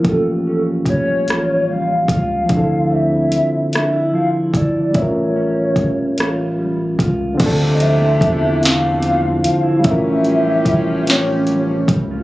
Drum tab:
CC |------|------|------|x-----|
HH |x-xx-x|x-xx-x|x-xx-x|xxxxxx|
SD |---r--|---r--|---r--|---o--|
BD |o-o--o|o----o|o-o--o|o-o---|

CC |------|
HH |xxxxxx|
SD |---o--|
BD |o-o--o|